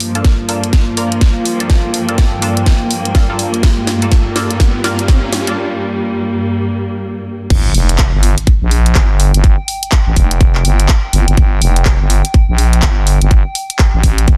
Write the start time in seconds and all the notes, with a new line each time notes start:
Already playing: G2 F3 A#3 F4, riser
0.00 A#3, open hi-hat
0.15 A#3 D4 F4 A4, closed hi-hat
0.24 kick, snare, closed hi-hat
0.49 A#3 D4 F4 A4, open hi-hat
0.64 closed hi-hat
0.73 kick, snare, closed hi-hat
0.97 A#3 D4 F4 A#4 G5, open hi-hat
1.12 closed hi-hat
1.21 kick, snare, closed hi-hat
1.45 open hi-hat
1.60 A#3 D4 F4 A4, closed hi-hat
1.70 kick, snare, closed hi-hat
1.94 open hi-hat
2.09 A#3 D4 F4 A4, closed hi-hat
2.18 kick, snare, closed hi-hat
2.42 A#3 D4 F4 A4, open hi-hat
2.57 closed hi-hat
2.66 kick, snare, closed hi-hat
2.91 open hi-hat
3.05 closed hi-hat
3.15 A#3 D4 F4 A4, kick, snare, closed hi-hat
3.30 A#3 D4 F4 A4
3.39 open hi-hat
3.54 closed hi-hat
3.63 G3, kick, snare, closed hi-hat
3.87 snare, open hi-hat
4.02 A#3 D4 F4 A4, closed hi-hat
4.12 kick, snare, closed hi-hat
4.36 A#3 D4 F4 A4, snare, open hi-hat
4.51 closed hi-hat
4.57 F5, kick, snare, closed hi-hat
4.84 A#3 D4 F4 A#4, snare, open hi-hat
4.99 closed hi-hat
5.08 kick, snare, closed hi-hat
5.33 snare, open hi-hat
5.47 A#3 D4 F4 A4, closed hi-hat
7.50 G1, kick, closed hi-hat, crash, impact
7.74 F1, open hi-hat
7.89 closed hi-hat
7.98 kick, clap, closed hi-hat
8.13 G1
8.23 open hi-hat
8.38 closed hi-hat
8.47 kick, closed hi-hat
8.62 A#1
8.67 G5
8.71 open hi-hat
8.86 closed hi-hat
8.95 G1, kick, clap, closed hi-hat
9.20 open hi-hat
9.34 G1, closed hi-hat
9.44 kick, closed hi-hat
9.68 open hi-hat
9.83 closed hi-hat
9.92 kick, clap, closed hi-hat
10.07 A1
10.16 F1, kick, open hi-hat
10.31 closed hi-hat
10.41 kick, closed hi-hat
10.55 clap
10.65 G1, open hi-hat
10.80 closed hi-hat
10.89 kick, clap, closed hi-hat
11.13 G1, open hi-hat
11.28 G1, closed hi-hat
11.37 G1, kick, closed hi-hat
11.62 F1, open hi-hat
11.76 closed hi-hat
11.85 kick, clap, closed hi-hat
12.01 G1
12.10 open hi-hat
12.25 closed hi-hat
12.34 kick, closed hi-hat
12.49 A#1
12.58 open hi-hat
12.73 closed hi-hat
12.82 G1, kick, clap, closed hi-hat
13.07 open hi-hat
13.21 G1, closed hi-hat
13.31 kick, closed hi-hat
13.55 open hi-hat
13.70 closed hi-hat
13.79 kick, clap, closed hi-hat
13.94 A1
14.03 A1, kick, open hi-hat
14.18 closed hi-hat
14.28 G1, kick, closed hi-hat